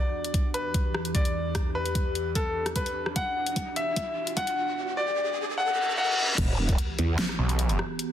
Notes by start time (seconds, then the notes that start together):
Already playing: E2 E3 D4 G4 D5, riser
0.24 closed hi-hat
0.34 kick, closed hi-hat
0.54 B4, closed hi-hat
0.74 kick, closed hi-hat
0.94 cross-stick
1.05 closed hi-hat
1.15 D5, kick, closed hi-hat
1.25 closed hi-hat
1.55 kick, cross-stick, closed hi-hat
1.75 B4
1.86 closed hi-hat
1.95 kick, closed hi-hat
2.15 closed hi-hat
2.35 A4, kick, closed hi-hat
2.66 cross-stick, closed hi-hat
2.76 B4, kick, closed hi-hat
2.86 closed hi-hat
3.06 cross-stick
3.16 F#5, kick, closed hi-hat
3.47 closed hi-hat
3.56 kick, closed hi-hat
3.76 E5, closed hi-hat
3.96 kick, closed hi-hat
4.27 closed hi-hat
4.37 F#5, kick, closed hi-hat
4.47 closed hi-hat
4.97 D5
5.58 F#5, reverse cymbal
5.98 F#5
6.38 E1 E3 B3 F#4 G4, kick, closed hi-hat, crash, sub drop
6.69 kick, closed hi-hat
6.78 closed hi-hat
6.99 E2, closed hi-hat
7.19 snare, closed hi-hat
7.29 cross-stick
7.39 B1
7.49 closed hi-hat
7.59 closed hi-hat
7.69 closed hi-hat
7.79 cross-stick
7.99 closed hi-hat